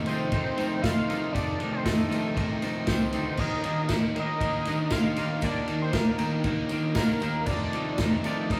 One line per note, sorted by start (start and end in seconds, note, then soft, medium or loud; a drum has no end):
0.00 8.60 D#4 medium
0.00 3.36 A4 medium
0.00 1.08 F5 medium
0.06 0.31 F2 medium
0.06 0.31 C3 loud
0.06 0.31 D#3 medium
0.06 0.27 F3 medium
0.06 0.32 A3 loud
0.06 0.33 D#4 loud
0.06 0.83 C5 loud
0.06 0.83 G5 loud
0.06 ride medium
0.06 tambourine medium
0.32 0.55 F2 medium
0.32 0.42 F2 medium
0.32 0.56 C3 medium
0.32 0.56 D#3 medium
0.32 0.57 A3 loud
0.32 0.58 D#4 loud
0.32 kick loud
0.32 ride loud
0.56 0.80 F2 loud
0.56 0.81 C3 loud
0.56 0.82 D#3 medium
0.56 0.79 F3 medium
0.56 0.81 A3 medium
0.56 0.83 D#4 loud
0.56 ride medium
0.56 tambourine medium
0.81 1.08 F2 medium
0.81 0.94 F2 medium
0.81 1.08 C3 medium
0.81 1.09 D#3 loud
0.81 1.09 A3 loud
0.81 1.10 D#4 medium
0.81 1.32 F5 loud
0.81 1.32 C6 loud
0.81 kick loud
0.81 snare loud
0.81 ride medium
0.81 tambourine loud
1.08 1.33 F2 medium
1.08 1.34 C3 medium
1.08 1.34 D#3 medium
1.08 1.30 F3 medium
1.08 1.34 A3 medium
1.08 1.35 D#4 loud
1.08 3.36 G5 medium
1.08 ride medium
1.08 tambourine medium
1.33 1.58 F2 medium
1.33 1.55 F2 loud
1.33 1.59 C3 medium
1.33 1.59 D#3 medium
1.33 1.59 A3 medium
1.33 1.61 D#4 medium
1.33 1.69 D5 loud
1.33 1.69 A5 loud
1.33 kick loud
1.33 ride medium
1.33 tambourine medium
1.60 1.84 F2 medium
1.60 1.84 C3 medium
1.60 1.85 D#3 loud
1.60 1.81 F3 medium
1.60 1.86 A3 medium
1.60 1.86 D#4 medium
1.60 ride medium
1.60 tambourine soft
1.73 1.87 C5 medium
1.73 1.87 G5 medium
1.85 2.07 F2 medium
1.85 2.06 F2 medium
1.85 2.09 C3 medium
1.85 2.09 D#3 loud
1.85 2.09 A3 loud
1.85 2.10 D#4 loud
1.85 2.36 A4 medium
1.85 2.36 E5 medium
1.85 kick loud
1.85 snare loud
1.85 ride loud
1.85 tambourine medium
2.09 2.33 F2 medium
2.09 2.34 C3 loud
2.09 2.34 D#3 medium
2.09 2.31 F3 medium
2.09 2.35 A3 loud
2.09 2.36 D#4 medium
2.09 ride medium
2.09 tambourine medium
2.34 2.60 F2 medium
2.34 2.47 F2 medium
2.34 2.61 C3 medium
2.34 2.62 D#3 loud
2.34 2.63 A3 loud
2.34 2.63 D#4 medium
2.34 kick loud
2.34 ride loud
2.34 tambourine soft
2.62 2.85 F2 loud
2.62 2.86 C3 medium
2.62 2.87 D#3 loud
2.62 2.83 F3 medium
2.62 2.87 A3 loud
2.62 2.88 D#4 loud
2.62 ride medium
2.62 tambourine medium
2.87 3.11 C2 medium
2.87 3.11 F2 medium
2.87 3.12 C3 medium
2.87 3.12 D#3 medium
2.87 3.12 A3 medium
2.87 3.14 D#4 loud
2.87 3.41 C5 medium
2.87 3.41 G5 medium
2.87 kick loud
2.87 snare loud
2.87 ride loud
2.87 tambourine medium
3.12 3.36 D2 medium
3.12 3.37 F2 medium
3.12 3.37 C3 medium
3.12 3.37 D#3 medium
3.12 3.37 A3 loud
3.12 3.39 D#4 medium
3.12 ride medium
3.12 tambourine medium
3.37 3.59 D#2 loud
3.37 3.63 D#3 medium
3.37 3.64 G3 medium
3.37 3.65 A#3 loud
3.37 3.66 D4 medium
3.37 3.65 D#4 loud
3.37 7.44 A#4 medium
3.37 3.90 D#5 loud
3.37 7.44 G5 medium
3.37 3.90 A#5 loud
3.37 kick loud
3.37 tambourine medium
3.37 crash medium
3.64 3.88 D#3 medium
3.64 3.85 D#3 medium
3.64 3.88 G3 medium
3.64 3.88 A#3 medium
3.64 3.91 D4 medium
3.64 3.89 D#4 loud
3.64 ride medium
3.64 tambourine soft
3.88 4.10 D#2 medium
3.88 4.14 D#3 loud
3.88 4.15 G3 loud
3.88 4.15 A#3 medium
3.88 4.17 D4 loud
3.88 4.16 D#4 loud
3.88 kick loud
3.88 snare loud
3.88 ride loud
3.88 tambourine medium
4.15 4.40 D#3 medium
4.15 4.36 D#3 medium
4.15 4.41 G3 medium
4.15 4.42 A#3 medium
4.15 4.41 D4 loud
4.15 4.42 D#4 loud
4.15 ride medium
4.19 4.93 D#5 loud
4.19 4.93 A#5 loud
4.41 4.51 D#2 medium
4.41 4.65 D#3 medium
4.41 4.66 G3 loud
4.41 4.66 A#3 medium
4.41 4.66 D4 medium
4.41 4.68 D#4 loud
4.41 kick loud
4.41 ride loud
4.65 4.90 D#3 medium
4.65 4.87 D#3 loud
4.65 4.91 G3 loud
4.65 4.91 A#3 loud
4.65 4.91 D4 medium
4.65 4.92 D#4 loud
4.65 snare soft
4.65 ride medium
4.65 tambourine medium
4.90 5.02 D#2 medium
4.90 5.17 D#3 loud
4.90 5.17 G3 medium
4.90 5.18 A#3 medium
4.90 5.17 D4 medium
4.90 5.18 D#4 loud
4.90 5.43 F5 loud
4.90 5.43 C6 loud
4.90 kick loud
4.90 snare loud
4.90 ride loud
4.90 tambourine loud
5.16 5.38 D#3 medium
5.16 5.43 D#3 medium
5.16 5.43 G3 medium
5.16 5.43 A#3 medium
5.16 5.42 D4 medium
5.16 5.45 D#4 medium
5.16 ride medium
5.16 tambourine medium
5.41 5.63 D#2 loud
5.41 5.66 D#3 medium
5.41 5.67 G3 medium
5.41 5.68 A#3 loud
5.41 5.67 D4 medium
5.41 5.79 D5 loud
5.41 5.79 A5 loud
5.41 kick loud
5.41 ride loud
5.41 tambourine medium
5.45 5.68 D#4 medium
5.67 5.92 D#3 medium
5.67 5.89 D#3 medium
5.67 5.93 G3 medium
5.67 5.93 A#3 loud
5.67 5.93 D4 medium
5.67 5.95 D#4 loud
5.67 ride medium
5.67 tambourine soft
5.82 5.94 C5 loud
5.82 5.94 G5 loud
5.93 6.14 D#2 medium
5.93 6.17 D#3 loud
5.93 6.17 G3 loud
5.93 6.18 A#3 loud
5.93 6.19 D4 loud
5.93 6.19 D#4 loud
5.93 6.42 A#4 medium
5.93 6.42 F5 medium
5.93 kick loud
5.93 snare loud
5.93 ride loud
5.93 tambourine loud
6.18 6.43 D#3 medium
6.18 6.40 D#3 medium
6.18 6.43 G3 medium
6.18 6.44 A#3 medium
6.18 6.45 D4 loud
6.18 6.45 D#4 medium
6.18 ride medium
6.18 tambourine medium
6.44 6.55 D#2 medium
6.44 6.69 D#3 medium
6.44 6.70 G3 medium
6.44 6.70 A#3 loud
6.44 6.71 D4 loud
6.44 6.71 D#4 loud
6.44 kick loud
6.44 ride medium
6.69 6.95 D#3 medium
6.69 6.92 D#3 loud
6.69 6.94 G3 medium
6.69 6.95 A#3 loud
6.69 6.97 D4 medium
6.69 6.95 D#4 loud
6.69 ride medium
6.69 tambourine medium
6.95 7.06 D#2 loud
6.95 7.20 D#3 medium
6.95 7.20 G3 medium
6.95 7.21 A#3 loud
6.95 7.22 D4 medium
6.95 7.21 D#4 loud
6.95 7.47 A#4 loud
6.95 7.47 F5 loud
6.95 kick loud
6.95 snare loud
6.95 ride loud
6.95 tambourine loud
7.20 7.43 D#2 medium
7.20 7.46 D#3 medium
7.20 7.46 G3 loud
7.20 7.46 A#3 medium
7.20 7.47 D4 medium
7.20 7.46 D#4 loud
7.20 ride medium
7.20 tambourine medium
7.46 7.73 F2 medium
7.46 7.68 F2 loud
7.46 7.73 C3 medium
7.46 7.73 D#3 medium
7.46 7.74 A3 medium
7.46 7.74 D#4 medium
7.46 8.60 A4 medium
7.46 7.98 D5 loud
7.46 8.60 F5 medium
7.46 7.98 A5 loud
7.46 kick loud
7.46 crash loud
7.46 tambourine medium
7.72 7.97 F2 medium
7.72 7.99 C3 loud
7.72 7.98 D#3 medium
7.72 7.93 F3 medium
7.72 7.99 A3 medium
7.72 8.00 D#4 medium
7.72 ride medium
7.72 tambourine soft
7.98 8.24 F2 medium
7.98 8.19 F2 medium
7.98 8.25 C3 loud
7.98 8.25 D#3 loud
7.98 8.25 A3 loud
7.98 8.26 D#4 loud
7.98 kick loud
7.98 snare loud
7.98 ride loud
7.98 tambourine loud
8.24 8.50 F2 medium
8.24 8.51 C3 loud
8.24 8.52 D#3 medium
8.24 8.45 F3 medium
8.24 8.52 A3 loud
8.24 8.52 D#4 medium
8.24 8.49 D5 loud
8.24 8.49 A5 loud
8.24 ride medium
8.24 tambourine medium
8.50 8.60 F2 medium
8.50 8.60 C3 loud
8.50 8.60 D#3 loud
8.50 8.60 A3 medium
8.50 8.60 D#4 loud
8.50 8.60 D#5 loud
8.50 8.60 A#5 loud
8.50 kick loud
8.50 ride loud